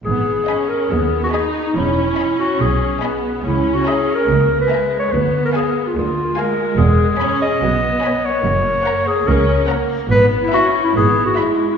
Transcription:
<<
  \new Staff \with { instrumentName = "Violin section" } { \time 4/4 \key gis \minor \tempo 4 = 143 r4 b''4 r4 b''4 | r4 b''4 r4 b''4 | r4 ais''4 r4 ais''4 | r4 aes''4 r4 aes''4 |
\key e \lydian r4 b''4 r4 b''4 | r4 ais''4 r4 ais''4 | r4 b''4 r4 b''4 | }
  \new Staff \with { instrumentName = "Violin section" } { \time 4/4 \key gis \minor r4 <dis'' gis''>4 r4 <dis'' gis''>4 | r4 <dis'' gis''>4 r4 <dis'' gis''>4 | r4 <e'' gis''>4 r4 <e'' gis''>4 | r4 <f'' aes''>4 r4 <f'' aes''>4 |
\key e \lydian r4 <cis'' gis''>4 r4 <cis'' gis''>4 | r4 <cis'' fis''>4 r4 <cis'' fis''>4 | r4 e''4 r4 e''4 | }
  \new Staff \with { instrumentName = "Clarinet" } { \time 4/4 \key gis \minor gis'4. ais'8 gis'8. fis'16 gis'8. dis'16 | e'4. fis'8 gis'4. r8 | \tuplet 3/2 { e'4 fis'8 gis'4 ais'8~ } ais'8. b'16~ \tuplet 3/2 { b'4 cis''8 } | b'8. ais'16 aes'8. f'16 f'4 ais'4 |
\key e \lydian gis'4. dis''2 cis''8~ | cis''4. gis'8 ais'4 r4 | b'8. e'16 \tuplet 3/2 { fis'4 e'8 gis'4 fis'8 e'4 e'8 } | }
  \new Staff \with { instrumentName = "Viola section" } { \time 4/4 \key gis \minor b4 cis'4 b4 dis'4 | cis'2. b4 | cis'2 ais4 gis4 | b2 ais4 aes4~ |
\key e \lydian aes4 cis'4 b2 | ais2 cis'4 ais4 | b4 cis'4 b4 gis4 | }
  \new Staff \with { instrumentName = "Cello section" } { \clef bass \time 4/4 \key gis \minor gis,4 r4 dis,4 r4 | e,4 r4 b,4 r4 | cis,4 r4 cis,4 r4 | d,4 r4 d,4 r4 |
\key e \lydian e,4 r4 b,4 r4 | fis,4 r4 cis,4 r4 | gis,4 r4 gis,4 r4 | }
  \new Staff \with { instrumentName = "Double bass section" } { \clef bass \time 4/4 \key gis \minor gis,,4 r4 dis,4 r4 | e,,4 r4 b,,4 r4 | cis,4 r4 cis,4 r4 | d,4 r4 d,4 r4 |
\key e \lydian e,,4 r4 b,,4 r4 | fis,,4 r4 cis,4 r4 | gis,,4 r4 gis,,4 r4 | }
>>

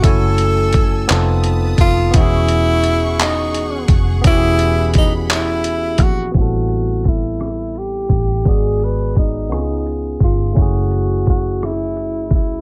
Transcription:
<<
  \new Staff \with { instrumentName = "String section" } { \time 6/8 \key e \major \tempo 4. = 57 << { e'''4. ees'''4. | cis'''2. | b''2. | r2. |
r2. | r2. | } \\ { <a' gis''>4. <b' a''>4. | <gis' fis''>2.~ | <gis' fis''>2. | r2. |
r2. | r2. | } >> }
  \new Staff \with { instrumentName = "Tenor saxophone" } { \time 6/8 \key e \major a'2 r8 f'8 | e'4. dis'4 r8 | e'4 dis'8 e'4 fis'8 | fis'4 e'4 g'4 |
gis'8 b'8 dis'4 r8 eis'8 | fis'4 fis'8 e'4 e'8 | }
  \new Staff \with { instrumentName = "Tine electric piano" } { \time 6/8 \key e \major <a cis' e' fis' gis''>4. <b c' ees' f' a'>4. | <e b cis' fis' gis'>2. | <e b cis' fis' g' gis'>2. | <g b c' e' a'>2. |
<gis b fis' gis' d''>4. <b cis' dis' eis' gis'>4. | <a cis' e' fis' gis'>2. | }
  \new Staff \with { instrumentName = "Fingered electric bass" } { \clef bass \time 6/8 \key e \major fis,,4. f,,4 f,,8 | e,,2~ e,,8 f,,8 | e,,2~ e,,8 ais,,8 | a,,2~ a,,8 a,,8 |
gis,,4. cis,4 g,,8 | fis,,2~ fis,,8 c,8 | }
  \new DrumStaff \with { instrumentName = "Drums" } \drummode { \time 6/8 <hh bd>8 hh8 <hh bd>8 <hc hh>8 hh8 <hh bd>8 | <hh bd>8 hh8 hh8 <hc hh>8 hh8 <hh bd>8 | <hh bd>8 hh8 <hh bd>8 <hc hh>8 hh8 <hh bd>8 | <hh bd>8 hh8 <hh bd>8 <hh ss>8 hh8 <hh bd>8 |
<hh bd>8 hh8 <hh bd>8 <hh ss>8 hh8 <hh bd>8 | <hh bd>8 hh8 <hh bd>8 <hh ss>8 hh8 <hh bd>8 | }
>>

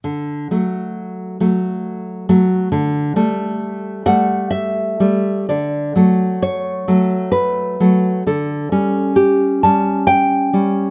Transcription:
\new Staff \with { instrumentName = "Nylon-string guitar" } { \time 3/4 \key d \major \tempo 4 = 66 << { r2. | r4. fis''8 e''4 | d''4 cis''4 b'4 | a'4 g'8 a''8 g''4 | } \\ { d8 <fis a>4 <fis a>4 <fis a>8 | d8 <g a>4 <g a>4 <g a>8 | d8 <fis a>4 <fis a>4 <fis a>8 | d8 <g cis'>4 <g cis'>4 <g cis'>8 | } >> }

